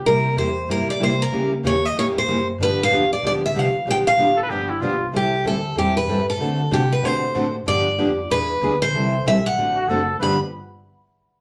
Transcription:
0.05 C2 C3 G3 A#3 E4 G4 A#4
0.36 E2 C3 G3 A#3 E4 G4 C5
0.69 G2 C3 G3 A#3 E4 G4 A#4
0.87 D5, muted upright bass stroke
1.00 C2 C3 G3 A#3 E4 G4 C5
1.22 A#4
1.32 C#2 C#3 E3 G3 A#3 C#4 E4 G4
1.63 D#2 C#3 E3 G3 A#3 C#4 E4 G4 C#5
1.85 D#5
1.95 E2 C#3 E3 G3 A#3 C#4 E4 G4
1.99 C#5
2.18 C5
2.26 F#2 C#3 E3 G3 A#3 C#4 E4 G4
2.58 G2 D3 F3 B3 D4 G4
2.63 B4
2.83 F5
2.91 E2 D3 F3 B3 D4 G4
3.13 D5
3.22 D2 D3 F3 B3 D4 G4
3.27 D5
3.46 E5
3.54 C2 D3 F3 B3 D4 G4
3.59 F5
3.72 muted upright bass stroke
3.86 B1 D3 F3 B3 D4 G4
3.91 G5
4.07 F5
4.17 A1 D3 F3 B3 D4 G4
4.37 A4
4.43 B4
4.49 G1 D3 F3 B3 D4 G4
4.69 E4
4.80 B1 D3 F3 B3 D4 F4 G4
5.12 C2 E3 G3 C4 E4 A4
5.16 G4
5.44 D2 E3 G3 C4 E4 A4
5.76 E2 E3 G3 C4 E4 G4 A4
5.97 B4
6.07 G2 E3 G3 C4 E4 A4
6.30 A4
6.39 D3 A3 C4 F#4 A4
6.71 C3 D3 A3 C4 F#4 G4 A4
6.92 B4
7.03 B2 D3 A3 C4 F#4 A4 C5
7.34 A2 D3 A3 C4 F#4 A4
7.66 G2 D3 F3 B3 D4 G4 D5
7.98 F2 D3 F3 B3 D4 G4
8.30 E2 E3 B3 D4 G#4 B4
8.61 D2 E3 B3 D4 G#4 B4
8.82 C5
8.93 C2 E3 G3 C4 E4 A4
9.25 B1 E3 G3 C4 E4 A4 E5
9.46 F#5
9.56 A1 D3 A3 C4 F#4 A4
9.75 F#4
9.88 F#1 D3 A3 C4 F#4 A4
10.20 G1 G2 D3 F3 B3 D4 G4 B4 B5

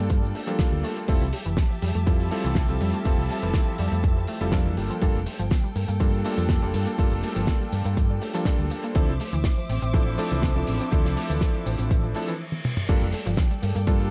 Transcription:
Already playing: G3 A#3 D4 F4 A4 D5 G5
0.00 G2
0.10 F3, kick, closed hi-hat, shaker
0.22 G3, shaker
0.35 A3, open hi-hat
0.47 F3 G3 A#3 D4 F4 A4, closed hi-hat, shaker
0.59 F3 G3 A#3 D4 F4 A4, kick, snare, closed hi-hat, shaker
0.72 D2 G3, shaker
0.84 A3, open hi-hat
0.96 A#3, closed hi-hat, shaker
1.08 F1 E3 G3 C4 E4 F4 G4 A4 E5 A5, kick, closed hi-hat, shaker
1.21 C2 F3, shaker
1.33 G3, open hi-hat
1.46 F1 E3, closed hi-hat, shaker
1.57 E3, kick, snare, closed hi-hat, shaker
1.70 F3, shaker
1.82 F2 G3, open hi-hat
1.95 F2 A3, closed hi-hat, shaker
2.06 E3 G3 C4 E4 F4 A4, kick, closed hi-hat, shaker
2.19 F3, shaker
2.31 G3 C4 E4 F4 A4, open hi-hat
2.44 C2 E3, closed hi-hat, shaker
2.55 E3, kick, snare, closed hi-hat, shaker
2.68 C2 F3 G3 C4 E4 F4 A4, shaker
2.80 F2 G3, open hi-hat
2.93 A3, closed hi-hat, shaker
3.05 F1 E3 G3 C4 E4 F4 A4, kick, closed hi-hat, shaker
3.18 C2 F3, shaker
3.30 G3, open hi-hat
3.42 F1 E3, closed hi-hat, shaker
3.54 E3, kick, snare, closed hi-hat, shaker
3.67 F3, shaker
3.78 F2 G3, open hi-hat
3.92 F2 A3, closed hi-hat, shaker
4.04 E3, kick, closed hi-hat, shaker
4.16 F3, shaker
4.28 A3, open hi-hat
4.41 F1 G3 C4 E4 F4 A4, closed hi-hat, shaker
4.52 F3 G3 A#3 D4 F4 A4, kick, snare, closed hi-hat, shaker
4.65 F2 E3, shaker
4.77 G1 G4 A4 G5, open hi-hat
4.90 F3, closed hi-hat, shaker
5.01 G1 F3 G3 A#3 D4 F4 A4, kick, closed hi-hat, shaker
5.14 F1 G3, shaker
5.26 A3, open hi-hat, shaker
5.38 G1 F3, closed hi-hat, shaker
5.51 F3, kick, snare, closed hi-hat, shaker
5.64 G3, shaker
5.75 G2 A#3, open hi-hat, shaker
5.88 G2 A#3, closed hi-hat, shaker
6.00 F3 G3 A#3 D4 F4 A4, kick, closed hi-hat, shaker
6.12 G3, shaker
6.25 G3 A3 A#3 D4 F4 A4, open hi-hat, shaker
6.37 F2 F3, closed hi-hat, shaker
6.49 F3, kick, snare, closed hi-hat, shaker
6.62 F1 G3 A#3 D4 F4 A4, shaker
6.74 G2 A#3, open hi-hat, shaker
6.87 A#3, closed hi-hat, shaker
6.98 G1 F3 G3 A#3 D4 F4 A4, kick, closed hi-hat, shaker
7.11 F1 G3, shaker
7.23 A3, open hi-hat, shaker
7.36 G1 F3, closed hi-hat, shaker
7.47 F3, kick, snare, closed hi-hat, shaker
7.60 G3, shaker
7.72 G2 A#3, open hi-hat, shaker
7.85 G2 A#3, closed hi-hat, shaker
7.97 F3, kick, closed hi-hat, shaker
8.09 G3, shaker
8.22 A3, open hi-hat, shaker
8.34 F3 G3 A#3 D4 F4 A4, closed hi-hat, shaker
8.45 F3 G3 A#3 D4 F4 A4, kick, snare, closed hi-hat, shaker
8.58 D2 G3, shaker
8.70 A#3, open hi-hat, shaker
8.83 A#3, closed hi-hat, shaker
8.95 D2 E3 F3 C4 D4 E4 A4 C5 E5 D6, kick, closed hi-hat, shaker
9.08 C2 F3, shaker
9.20 A3, open hi-hat, shaker
9.33 D2 E3, closed hi-hat, shaker
9.44 E3, kick, snare, closed hi-hat, shaker
9.58 F3, shaker
9.69 A1 C4, open hi-hat, shaker
9.82 A1 C4, closed hi-hat, shaker
9.93 E3 F3 C4 D4 E4 A4, kick, closed hi-hat, shaker
10.06 F3, shaker
10.18 F3 A3 C4 D4 E4 A4, open hi-hat, shaker
10.31 C2 E3, closed hi-hat, shaker
10.42 E3, kick, snare, closed hi-hat, shaker
10.55 C2 F3 C4 D4 E4 A4, shaker
10.67 A1 C4, open hi-hat, shaker
10.80 C4, closed hi-hat, shaker
10.91 D2 E3 F3 C4 D4 E4 A4, kick, closed hi-hat, shaker
11.05 C2 F3, snare, closed hi-hat, shaker
11.17 A3, open hi-hat, shaker
11.30 D2 E3, closed hi-hat, shaker
11.41 E3, kick, snare, closed hi-hat, shaker
11.54 F3, closed hi-hat, shaker
11.66 A1 C4, open hi-hat, shaker
11.78 A1 C4, closed hi-hat, shaker
11.91 E3, kick, closed hi-hat, reverse cymbal, shaker
12.04 F3, shaker
12.14 F3 A3 C4 D4 E4 A4, open hi-hat, shaker
12.27 E3, closed hi-hat, shaker
12.52 high tom
12.65 mid tom
12.77 mid tom
12.89 G1 F3 G3 A#3 D4 F4 A4 D5 G5, kick, closed hi-hat, crash, shaker
13.02 F1 G3, shaker
13.12 A3, open hi-hat, shaker
13.25 G1 F3, closed hi-hat, shaker
13.37 F3, kick, snare, closed hi-hat, shaker
13.51 G3, closed hi-hat, shaker
13.62 G2 A#3, open hi-hat, shaker
13.75 G2 A#3, closed hi-hat, shaker
13.87 F3 G3 A#3 D4 F4 A4, kick, closed hi-hat, shaker
14.00 G3, closed hi-hat, shaker

